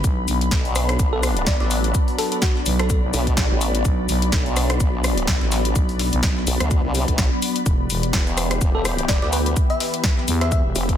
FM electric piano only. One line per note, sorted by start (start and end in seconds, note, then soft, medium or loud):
1.13 1.24 A4 medium
1.47 1.56 D5 medium
1.60 1.67 D5 medium
2.18 2.27 A4 medium
2.32 2.39 A4 medium
2.42 2.56 F#4 medium
2.79 2.86 A4 medium
2.90 2.98 A4 medium
8.75 8.86 A4 medium
9.09 9.17 D5 medium
9.22 9.29 D5 medium
9.33 9.41 B4 medium
9.46 9.53 B4 medium
9.70 9.81 E5 medium
10.41 10.48 E5 medium
10.52 10.60 E5 medium